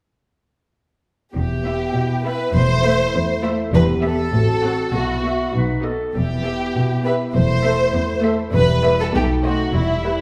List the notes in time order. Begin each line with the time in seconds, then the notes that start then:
1.33 E1 E2 B3 E4 G4
1.65 B3 E4 E5
1.95 B2
2.24 B3 E4 B4 E5
2.54 E1 E2 A3 C5
2.84 A3 E4 E5
3.14 E2
3.43 A3 E4 E5
3.73 E1 E2 B3 G4 B4
4.02 B3 G4 A4 E5
4.33 A1 A2 C4 F#4
4.63 C4 F#4 F#5
4.94 B1 B2 B3 E4 F#4
5.23 B3 F#4 E5
5.54 B1 B2 B3 D#4 B4
5.83 B3 F#4 A4 D#5
6.14 E1 E2 B3 E4 G4
6.44 B3 G4 E5
6.75 B2
7.05 B3 G4 B4 E5
7.34 E1 E2 A3 C5
7.64 A3 A4 E5
7.94 E2
8.24 A3 A4 E5
8.53 E1 E2 G3 E4 B4
8.83 G3 B4 E5
9.00 A4
9.13 B1 B2 A3 D#4 G4
9.44 A3 F#4 C5 D#5
9.73 E1 E2 G3 E4
10.04 G3 B4 E5